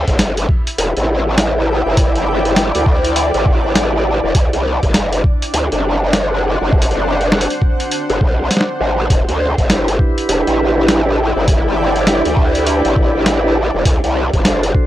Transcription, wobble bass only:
0.08 G1
0.78 E1
0.97 A1
1.86 G1
2.75 D2
3.34 A1
4.24 E1
4.35 D2
4.53 C2
4.83 F#1
5.54 D2
5.72 F#1
6.61 F#1
8.10 F#1
8.21 C2
8.80 A1
9.10 E1
9.28 D2
9.58 G1
10.29 E1
10.47 A1
11.36 G1
12.26 D2
12.85 A1
13.74 E1
13.85 D2
14.04 C2
14.33 F#1

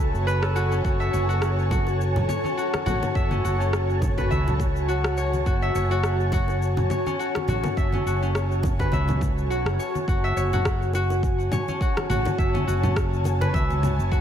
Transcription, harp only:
Already playing: C#4 F#4 B4 E5
0.27 B4
0.42 A4
0.56 F#4
0.71 C#4
0.84 F#4
1.00 E5
1.13 C#5
1.29 F#4
1.71 F#4
2.29 C#5
2.44 C#4
2.57 F#4
2.86 F#4
3.15 E5
3.31 C#4
3.44 F#4
3.60 C#4
4.18 B4
4.31 E5
4.88 F#4
5.17 C#5
5.46 F#4
5.62 E5
5.75 C#5
5.91 F#4
6.33 F#4
6.91 C#5
7.07 C#4
7.19 F#4
7.49 F#4
7.77 E5
7.94 C#4
8.07 F#4
8.22 C#4
8.80 B4
8.93 E5
9.50 F#4
9.79 C#5
10.08 F#4
10.24 E5
10.37 C#5
10.53 F#4
10.95 F#4
11.52 C#5
11.68 C#4
11.81 F#4
12.09 F#4
12.39 E5
12.54 C#4
12.67 F#4
12.83 C#4
13.41 B4
13.54 E5
14.11 F#4

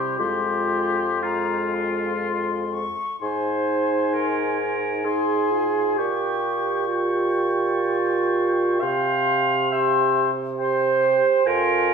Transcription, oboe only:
Already playing: G4
0.20 G4
1.23 F4
3.22 G#5
5.06 G#5
5.98 G5
8.81 G5
9.72 G5
10.59 G5
11.46 G#5

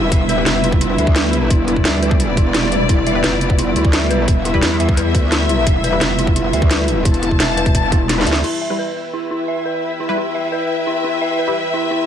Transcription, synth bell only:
0.12 E5
0.29 B4
0.64 E4
0.81 E4
0.98 E5
1.16 B4
1.50 E4
1.68 E4
1.85 E5
2.03 B4
2.37 E4
2.54 E4
2.89 E4
3.07 E5
3.24 B4
3.59 E4
3.76 E4
3.93 E5
4.11 B4
4.45 E4
4.63 E4
4.80 E5
4.97 B4
5.32 E4
5.49 E4
5.67 E5
5.84 B4
6.19 E4
6.36 E4
6.53 E5
6.71 B4
7.05 E4
7.23 E4
7.40 E5
7.57 B4
7.92 E4
8.09 E4
8.27 E5
8.44 E4
8.61 E5
8.79 B4
9.13 E4
9.31 E4
9.48 E5
9.65 B4
10.00 E4
10.17 E4
10.35 E5
10.52 B4
10.87 E4
11.04 E4
11.22 E5
11.39 B4
11.74 E4
11.91 E4

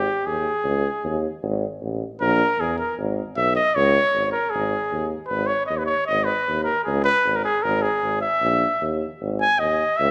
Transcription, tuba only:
0.27 D#2
0.64 C#2
1.04 D#2
1.42 G#1
1.81 A1
2.21 A#1
2.58 E2
2.98 G#1
3.37 B1
3.76 C#2
4.14 G#1
4.54 G#1
4.92 D#2
5.30 G#1
5.70 D#2
6.09 G#1
6.48 D#2
6.87 C#2
7.25 G#1
7.64 G#1
8.03 G#1
8.42 A#1
8.81 D#2
9.21 G#1
9.59 D#2
10.00 C#2

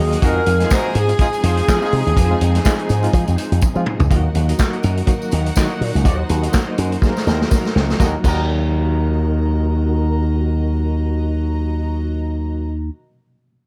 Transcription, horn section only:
0.22 D#4 F#4 A#4
0.61 D#4 F4 G#4
0.71 D#4 F#4 A#4
1.20 D#4 F4 G#4
1.44 F4 G#4 C5
1.82 D#4 F4 G#4
7.99 F#3 D#4 A#4
8.24 F#3 D#4 A#4

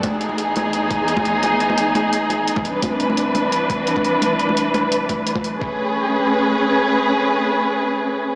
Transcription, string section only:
0.03 E2 D#4 G#4
2.65 C2 E3 D4 B4
5.61 A3 C#4 G#4 B4

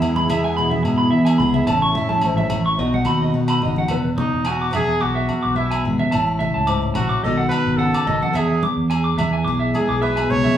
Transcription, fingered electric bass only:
0.01 E2
0.29 E2
0.83 G#2
1.12 E3
1.39 C#2
1.67 A1
1.95 A2
2.23 A1
2.50 A1
2.77 B1
3.05 D#2
3.33 B2
3.63 G#1
3.89 E1
4.33 E1
4.74 E1
5.02 B1
5.45 B1
5.85 G#1
6.13 A1
6.55 C#2
6.95 A#1
7.22 B1
7.66 G#1
8.06 G#1
8.34 E2
8.76 E2
9.18 E2
9.45 B1
9.88 B1
10.30 B1

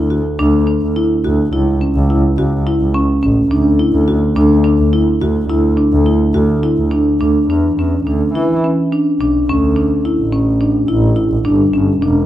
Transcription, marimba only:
0.10 F#4
0.39 D4
0.67 D4
0.96 E4
1.24 F#4
1.53 E4
1.81 C#4
2.10 E4
2.38 F#4
2.67 E4
2.94 C#4
3.23 C#4
3.51 D4
3.80 E4
4.08 F#4
4.36 D4
4.64 D4
4.93 E4
5.22 F#4
5.50 E4
5.77 D4
6.06 E4
6.34 F#4
6.63 E4
6.91 D4
7.21 D4
7.50 D4
7.79 C#4
8.07 D4
8.35 E4
8.64 C#4
8.93 D4
9.21 D4
9.49 C#4
9.76 D4
10.05 E4
10.32 C#4
10.61 D4
10.88 E4
11.16 E4
11.45 D4
11.73 C#4
12.02 D4

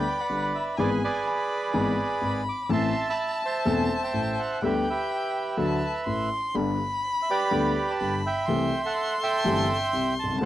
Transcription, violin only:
Already playing: B5
0.78 G#5
1.27 B5
1.75 B5
2.70 A5
4.61 G5
5.59 A5
6.07 C6
6.55 B5
7.99 B5
8.46 C6
10.39 A5

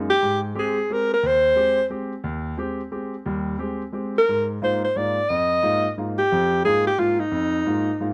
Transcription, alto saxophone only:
0.10 G4
0.59 G#4
0.93 A#4
1.13 A#4
1.27 C5
4.18 A#4
4.64 C5
4.84 C5
4.97 D5
5.29 D#5
6.18 G4
6.65 G#4
6.87 G4
6.99 F4
7.20 D#4

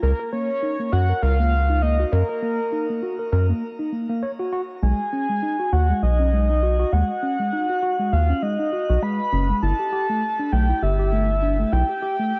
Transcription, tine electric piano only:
0.03 A#4
0.19 A#4
0.33 A#3
0.62 D#4
0.79 A#3
0.93 F#4
1.09 A#4
1.23 A#4
1.39 A#3
1.69 D#4
1.82 A#3
1.99 F#4
2.13 A#4
2.29 A#4
2.42 A#3
2.72 D#4
2.89 A#3
3.03 F#4
3.19 A#4
3.32 A#4
3.49 A#3
3.79 D#4
3.92 A#3
4.09 A#3
4.23 C#5
4.39 F#4
4.53 F#4
4.83 G#3
5.13 C#4
5.29 G#3
5.43 D#4
5.59 F#4
5.72 F#4
5.89 G#3
6.19 C#4
6.33 G#3
6.49 D#4
6.63 F#4
6.79 F#4
6.93 G#3
7.23 C#4
7.39 G#3
7.53 D#4
7.69 F#4
7.83 F#4
7.99 G#3
8.29 C#4
8.42 G#3
8.59 D#4
8.73 F#4
8.89 F#4
9.02 G#3
9.33 C#4
9.49 G#3
9.63 E4
9.79 G4
9.92 G4
10.09 A3
10.39 D4
10.52 A3
10.69 E4
10.82 G4
10.99 G4
11.12 A3
11.42 D4
11.59 A3
11.72 E4
11.89 G4
12.02 G4
12.19 A3

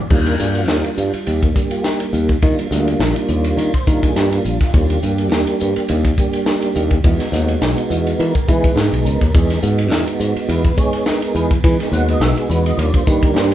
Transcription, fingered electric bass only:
0.11 D#2
0.40 G2
0.68 D#2
0.98 G2
1.13 muted fingered electric bass stroke
1.27 D#2
2.13 D#2
2.43 D#3
2.71 D2
3.00 A#1
3.29 D#2
3.57 D#3
3.87 D#3
4.16 G2
4.45 A#1
4.61 muted fingered electric bass stroke
4.74 D#2
5.03 G2
5.32 D#2
5.62 G2
5.77 muted fingered electric bass stroke
5.90 D#2
6.76 D#2
7.04 E2
7.32 D#2
7.61 B1
7.90 E2
8.19 E3
8.49 E3
8.76 G#2
8.92 B1
9.05 C#2
9.22 D#2
9.35 E2
9.63 G#2
9.91 E2
10.20 G#2
10.36 muted fingered electric bass stroke
10.49 E2
11.35 E2
11.64 E3
11.92 D#2
12.20 B1
12.49 E2
12.77 D#2
13.07 D#3
13.34 G2

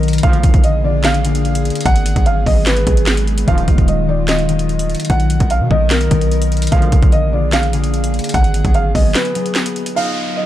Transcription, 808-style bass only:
Already playing: B1
0.23 A#1
0.44 A#1
0.54 A#1
1.86 G#1
2.16 G#1
2.46 G#1
2.87 G#1
3.48 D#1
3.68 F#1
3.78 D#1
5.10 B1
5.40 B1
5.61 B2
5.71 B1
6.11 B1
6.72 A#1
6.92 A#1
7.03 A#1
8.34 G#1
8.65 G#1
8.95 G#1

